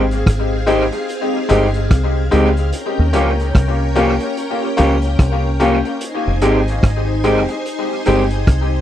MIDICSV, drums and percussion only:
0, 0, Header, 1, 2, 480
1, 0, Start_track
1, 0, Tempo, 821018
1, 1593, Time_signature, 4, 2, 24, 8
1, 5151, End_track
2, 0, Start_track
2, 0, Title_t, "Drums"
2, 66, Note_on_c, 9, 42, 53
2, 124, Note_off_c, 9, 42, 0
2, 155, Note_on_c, 9, 36, 107
2, 158, Note_on_c, 9, 37, 109
2, 159, Note_on_c, 9, 42, 102
2, 213, Note_off_c, 9, 36, 0
2, 216, Note_off_c, 9, 37, 0
2, 217, Note_off_c, 9, 42, 0
2, 396, Note_on_c, 9, 42, 75
2, 454, Note_off_c, 9, 42, 0
2, 540, Note_on_c, 9, 42, 54
2, 599, Note_off_c, 9, 42, 0
2, 638, Note_on_c, 9, 42, 72
2, 696, Note_off_c, 9, 42, 0
2, 873, Note_on_c, 9, 42, 81
2, 932, Note_off_c, 9, 42, 0
2, 1016, Note_on_c, 9, 42, 47
2, 1075, Note_off_c, 9, 42, 0
2, 1115, Note_on_c, 9, 36, 125
2, 1116, Note_on_c, 9, 37, 107
2, 1118, Note_on_c, 9, 42, 100
2, 1173, Note_off_c, 9, 36, 0
2, 1175, Note_off_c, 9, 37, 0
2, 1176, Note_off_c, 9, 42, 0
2, 1355, Note_on_c, 9, 42, 77
2, 1413, Note_off_c, 9, 42, 0
2, 1502, Note_on_c, 9, 42, 49
2, 1560, Note_off_c, 9, 42, 0
2, 1593, Note_on_c, 9, 42, 99
2, 1652, Note_off_c, 9, 42, 0
2, 1831, Note_on_c, 9, 42, 79
2, 1889, Note_off_c, 9, 42, 0
2, 1985, Note_on_c, 9, 42, 51
2, 2043, Note_off_c, 9, 42, 0
2, 2074, Note_on_c, 9, 36, 112
2, 2076, Note_on_c, 9, 37, 106
2, 2077, Note_on_c, 9, 42, 102
2, 2132, Note_off_c, 9, 36, 0
2, 2135, Note_off_c, 9, 37, 0
2, 2135, Note_off_c, 9, 42, 0
2, 2312, Note_on_c, 9, 42, 76
2, 2371, Note_off_c, 9, 42, 0
2, 2456, Note_on_c, 9, 42, 53
2, 2515, Note_off_c, 9, 42, 0
2, 2555, Note_on_c, 9, 42, 66
2, 2613, Note_off_c, 9, 42, 0
2, 2793, Note_on_c, 9, 42, 78
2, 2851, Note_off_c, 9, 42, 0
2, 2934, Note_on_c, 9, 42, 46
2, 2993, Note_off_c, 9, 42, 0
2, 3034, Note_on_c, 9, 36, 120
2, 3035, Note_on_c, 9, 37, 109
2, 3037, Note_on_c, 9, 42, 105
2, 3093, Note_off_c, 9, 36, 0
2, 3093, Note_off_c, 9, 37, 0
2, 3095, Note_off_c, 9, 42, 0
2, 3275, Note_on_c, 9, 42, 80
2, 3333, Note_off_c, 9, 42, 0
2, 3421, Note_on_c, 9, 42, 49
2, 3479, Note_off_c, 9, 42, 0
2, 3513, Note_on_c, 9, 42, 105
2, 3571, Note_off_c, 9, 42, 0
2, 3751, Note_on_c, 9, 42, 81
2, 3809, Note_off_c, 9, 42, 0
2, 3904, Note_on_c, 9, 42, 53
2, 3962, Note_off_c, 9, 42, 0
2, 3993, Note_on_c, 9, 36, 108
2, 3996, Note_on_c, 9, 37, 110
2, 3996, Note_on_c, 9, 42, 100
2, 4051, Note_off_c, 9, 36, 0
2, 4054, Note_off_c, 9, 37, 0
2, 4055, Note_off_c, 9, 42, 0
2, 4233, Note_on_c, 9, 42, 69
2, 4291, Note_off_c, 9, 42, 0
2, 4376, Note_on_c, 9, 42, 53
2, 4434, Note_off_c, 9, 42, 0
2, 4476, Note_on_c, 9, 42, 64
2, 4534, Note_off_c, 9, 42, 0
2, 4710, Note_on_c, 9, 42, 78
2, 4769, Note_off_c, 9, 42, 0
2, 4854, Note_on_c, 9, 42, 43
2, 4912, Note_off_c, 9, 42, 0
2, 4953, Note_on_c, 9, 36, 118
2, 4955, Note_on_c, 9, 37, 103
2, 4956, Note_on_c, 9, 42, 105
2, 5012, Note_off_c, 9, 36, 0
2, 5013, Note_off_c, 9, 37, 0
2, 5015, Note_off_c, 9, 42, 0
2, 5151, End_track
0, 0, End_of_file